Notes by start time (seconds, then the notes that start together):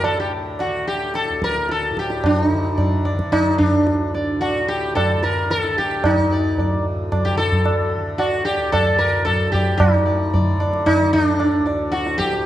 Already playing: D2 A2 D3
0.04 D3 A4, tabla na
0.20 G4
0.59 F#4, tabla na
0.67 D3
0.88 G4
1.14 A4, tabla te
1.28 D2, tabla te
1.42 A#4, tabla ke
1.56 tabla te
1.69 A4, tabla te
1.83 tabla te
1.91 A2
1.97 G4, tabla ke
2.10 tabla te
2.24 D4, tabla na, tabla ge
2.45 D#4
2.52 D3
2.78 D5, tabla tin, tabla ge
3.05 D5, tabla na
3.13 D3
3.19 tabla ke
3.32 D#4, tabla na, tabla ge
3.58 D4, tabla ge
3.72 D2
3.87 tabla te
4.14 D5, tabla te
4.35 A2
4.41 F#4, tabla na
4.68 G4
4.95 D3 A4, tabla na, tabla ge
5.23 A#4, tabla te
5.50 A4, tabla te
5.55 D3
5.65 tabla te
5.78 G4, tabla ke
5.91 tabla te
6.04 D#4, tabla na, tabla ge
6.16 D2
6.32 D5
6.58 D5, tabla tin, tabla ge
6.76 A2
7.12 D5, tabla na, tabla ge
7.25 G4
7.35 D3 A4, tabla te
7.52 tabla ge
7.66 tabla na
7.96 D3
8.18 F#4 D5, tabla na
8.45 G4 D5
8.57 D2
8.72 A4 D5, tabla na, tabla ge
8.98 A#4 D5
9.16 A2
9.25 A4, tabla na, tabla ge
9.52 G4 D5, tabla ge
9.78 D#4, tabla na, tabla ge
9.83 A2
10.06 D5
10.34 D5, tabla tin, tabla ge
10.41 D3
10.60 D5, tabla na
10.73 tabla ke
10.86 D#4, tabla na, tabla ge
11.00 D3
11.13 D4, tabla ge
11.39 D5, tabla na
11.59 D2
11.66 D5, tabla na
11.92 F#4, tabla te
12.07 tabla te
12.18 A2 G4, tabla ke
12.33 tabla te